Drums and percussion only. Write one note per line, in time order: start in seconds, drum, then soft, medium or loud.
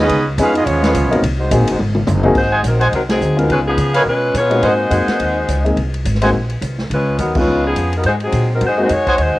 0.09 kick soft
0.09 ride medium
0.38 kick soft
0.38 hi-hat pedal medium
0.38 ride medium
0.55 ride medium
0.66 kick soft
0.66 ride medium
0.83 snare medium
0.83 ride medium
0.94 kick soft
0.94 hi-hat pedal medium
0.94 ride medium
1.12 ride medium
1.23 kick soft
1.23 ride medium
1.51 kick soft
1.51 hi-hat pedal medium
1.51 ride medium
1.67 ride medium
1.79 mid tom medium
1.95 mid tom medium
2.07 hi-hat pedal medium
2.07 mid tom loud
2.23 floor tom medium
2.35 kick medium
2.35 crash medium
2.64 kick soft
2.64 hi-hat pedal medium
2.64 ride medium
2.81 ride soft
2.92 kick soft
2.92 ride medium
3.09 snare medium
3.09 ride medium
3.22 hi-hat pedal medium
3.39 ride soft
3.49 kick soft
3.49 ride medium
3.77 kick soft
3.77 hi-hat pedal medium
3.77 ride medium
3.94 ride medium
4.05 kick soft
4.34 kick soft
4.34 hi-hat pedal medium
4.34 ride medium
4.51 ride soft
4.62 kick soft
4.62 ride medium
4.91 kick soft
4.91 hi-hat pedal medium
4.91 ride medium
5.08 snare soft
5.08 ride soft
5.19 kick soft
5.19 ride medium
5.48 kick soft
5.48 hi-hat pedal medium
5.48 ride medium
5.66 ride soft
5.76 kick soft
5.76 ride medium
5.94 ride soft
6.05 kick soft
6.05 hi-hat pedal medium
6.05 ride medium
6.15 snare soft
6.21 snare soft
6.21 ride medium
6.33 kick soft
6.49 ride soft
6.62 kick soft
6.62 hi-hat pedal medium
6.62 ride medium
6.78 snare soft
6.90 kick soft
6.90 ride medium
7.18 kick soft
7.18 hi-hat pedal medium
7.18 ride medium
7.35 kick medium
7.35 crash medium
7.76 kick soft
7.76 hi-hat pedal soft
7.76 ride medium
7.93 ride soft
8.03 kick soft
8.03 ride medium
8.20 ride soft
8.32 kick soft
8.32 hi-hat pedal medium
8.32 ride medium
8.61 kick soft
8.61 ride medium
8.89 kick soft
8.89 hi-hat pedal medium
8.89 ride medium
9.07 kick medium
9.07 ride soft
9.18 kick soft
9.18 ride medium